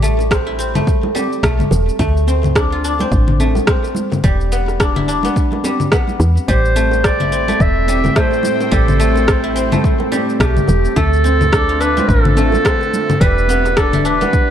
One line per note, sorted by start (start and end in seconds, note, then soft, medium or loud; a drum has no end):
0.00 0.80 A1 medium
0.00 1.14 G3 medium
0.00 0.75 A3 medium
0.00 0.30 C4 medium
0.00 0.46 E4 medium
0.00 shaker medium
0.19 high bongo soft
0.19 shaker soft
0.31 0.58 C4 medium
0.31 kick loud
0.31 cross-stick loud
0.31 shaker soft
0.47 2.78 E4 medium
0.59 2.27 C4 medium
0.59 shaker medium
0.75 1.43 A3 medium
0.75 high bongo soft
0.75 low conga medium
0.75 shaker soft
0.87 kick loud
0.87 shaker soft
1.03 high bongo medium
1.03 low conga medium
1.15 2.04 G3 medium
1.15 high bongo medium
1.15 high conga medium
1.15 shaker medium
1.32 shaker soft
1.43 1.62 B1 medium
1.43 1.99 A3 medium
1.43 kick loud
1.43 cross-stick loud
1.43 shaker soft
1.59 low conga medium
1.59 shaker soft
1.71 1.90 E1 medium
1.71 high bongo medium
1.71 shaker medium
1.88 high conga soft
1.88 shaker soft
1.99 3.04 D2 medium
1.99 3.39 A3 loud
1.99 kick loud
1.99 shaker soft
2.17 shaker soft
2.27 3.00 C4 medium
2.27 high conga medium
2.27 shaker medium
2.43 high bongo soft
2.43 low conga medium
2.43 shaker soft
2.55 2.84 D4 medium
2.55 kick loud
2.55 cross-stick loud
2.55 shaker soft
2.72 5.02 F4 medium
2.84 4.79 D4 medium
2.84 shaker medium
2.99 3.67 C4 medium
2.99 high bongo soft
2.99 low conga medium
2.99 shaker soft
3.12 3.60 A1 medium
3.12 kick loud
3.12 shaker soft
3.28 low conga medium
3.40 6.73 A3 medium
3.40 high conga medium
3.40 shaker medium
3.55 high bongo medium
3.55 low conga medium
3.55 shaker soft
3.67 4.58 C4 medium
3.67 kick loud
3.67 cross-stick loud
3.67 shaker soft
3.84 high bongo soft
3.84 shaker soft
3.95 low conga medium
3.95 shaker medium
4.12 high bongo medium
4.12 low conga medium
4.12 shaker soft
4.24 5.28 E1 medium
4.24 5.63 G3 medium
4.24 kick loud
4.24 shaker soft
4.41 shaker soft
4.52 5.24 B3 medium
4.52 shaker medium
4.68 cross-stick soft
4.68 high bongo soft
4.68 shaker soft
4.80 5.08 D4 medium
4.80 kick loud
4.80 cross-stick medium
4.80 shaker soft
4.96 7.20 E4 medium
4.96 low conga medium
5.08 7.88 D4 medium
5.08 shaker medium
5.23 5.92 B3 medium
5.23 high bongo soft
5.23 low conga medium
5.23 shaker soft
5.36 kick loud
5.36 shaker soft
5.52 high bongo medium
5.52 low conga medium
5.64 6.47 G3 medium
5.64 high bongo medium
5.64 high conga medium
5.64 shaker medium
5.80 low conga medium
5.80 shaker soft
5.92 7.10 B3 medium
5.92 kick loud
5.92 cross-stick medium
5.92 shaker soft
6.08 low conga medium
6.08 shaker soft
6.20 6.39 E2 medium
6.20 high bongo medium
6.20 shaker medium
6.37 high conga soft
6.37 shaker soft
6.48 7.53 A1 loud
6.48 10.97 A2 medium
6.48 7.87 G3 loud
6.48 7.06 C5 loud
6.48 kick medium
6.48 shaker soft
6.55 13.21 A3 medium
6.65 11.87 C4 medium
6.65 shaker soft
6.76 7.48 A3 medium
6.76 high conga medium
6.76 shaker medium
6.91 high bongo soft
6.91 shaker soft
6.99 11.87 G5 medium
7.04 7.32 C4 medium
7.04 7.63 D5 loud
7.04 kick loud
7.04 cross-stick medium
7.04 shaker soft
7.20 9.43 E4 medium
7.20 low conga medium
7.32 9.27 C4 medium
7.32 10.96 C5 medium
7.32 shaker medium
7.48 8.16 A3 medium
7.48 high bongo medium
7.48 low conga medium
7.48 shaker soft
7.60 8.09 E1 medium
7.60 8.19 E5 loud
7.60 kick loud
7.60 shaker soft
7.88 8.70 G3 medium
7.88 high conga medium
7.88 shaker medium
8.04 high bongo soft
8.04 low conga medium
8.04 shaker soft
8.16 8.99 A3 medium
8.16 8.74 C5 loud
8.16 kick loud
8.16 cross-stick medium
8.16 shaker soft
8.32 high bongo soft
8.32 shaker soft
8.43 low conga medium
8.43 shaker medium
8.60 high bongo medium
8.60 shaker soft
8.72 9.77 A1 loud
8.72 10.11 G3 loud
8.72 9.85 A4 medium
8.72 kick medium
8.72 shaker soft
8.88 low conga medium
8.88 shaker soft
9.00 9.72 A3 medium
9.00 shaker medium
9.15 high bongo soft
9.15 shaker soft
9.28 9.55 C4 medium
9.28 kick loud
9.28 cross-stick medium
9.28 shaker soft
9.44 11.75 E4 medium
9.56 11.24 C4 medium
9.56 shaker medium
9.72 10.40 A3 medium
9.72 high bongo soft
9.72 low conga medium
9.72 shaker soft
9.84 kick loud
9.84 shaker soft
10.00 high bongo medium
10.00 low conga medium
10.12 11.02 G3 medium
10.12 high bongo medium
10.12 high conga medium
10.12 shaker medium
10.29 shaker soft
10.40 10.59 B1 medium
10.40 10.96 A3 medium
10.40 10.98 G4 loud
10.40 kick loud
10.40 cross-stick medium
10.40 shaker soft
10.57 low conga medium
10.57 shaker soft
10.68 10.87 E1 medium
10.68 high bongo medium
10.68 shaker medium
10.85 high conga soft
10.85 shaker soft
10.96 12.01 D2 medium
10.96 13.21 D3 medium
10.96 12.36 A3 loud
10.96 11.82 A4 loud
10.96 kick medium
10.96 shaker soft
11.10 13.21 F4 medium
11.10 shaker soft
11.24 11.97 C4 medium
11.24 high conga medium
11.24 shaker medium
11.32 13.21 C5 medium
11.41 high bongo medium
11.41 low conga medium
11.41 shaker soft
11.53 11.80 D4 medium
11.53 kick loud
11.53 cross-stick medium
11.53 shaker soft
11.69 13.99 F4 medium
11.80 13.76 D4 medium
11.80 12.10 B4 loud
11.80 shaker medium
11.97 12.65 C4 medium
11.97 14.33 E5 medium
11.97 high bongo soft
11.97 low conga medium
11.97 shaker soft
12.09 12.57 A1 medium
12.09 13.22 A4 loud
12.09 kick loud
12.09 shaker soft
12.25 low conga medium
12.37 14.50 A3 medium
12.37 high conga medium
12.37 shaker medium
12.52 high bongo medium
12.52 low conga medium
12.52 shaker soft
12.65 13.55 C4 medium
12.65 kick loud
12.65 cross-stick medium
12.65 shaker soft
12.81 high bongo soft
12.81 shaker soft
12.94 low conga medium
12.94 shaker medium
13.10 high bongo medium
13.10 low conga medium
13.10 shaker soft
13.20 14.26 E1 loud
13.20 14.33 E3 medium
13.20 14.38 G3 loud
13.20 13.79 B4 loud
13.20 kick medium
13.20 shaker soft
13.38 shaker soft
13.47 14.21 B3 medium
13.47 14.50 D4 medium
13.47 high conga medium
13.47 shaker medium
13.60 14.50 G4 medium
13.65 cross-stick soft
13.65 high bongo medium
13.65 shaker soft
13.71 14.50 D5 medium
13.77 14.04 D4 medium
13.77 14.05 A4 loud
13.77 kick loud
13.77 cross-stick loud
13.77 shaker soft
13.93 14.50 E4 medium
13.93 low conga medium
13.93 shaker soft
14.05 14.50 D4 medium
14.05 14.50 B4 loud
14.05 shaker medium
14.21 14.50 B3 medium
14.21 high bongo medium
14.21 low conga medium
14.21 shaker soft
14.33 14.50 G3 medium
14.33 kick loud
14.33 shaker soft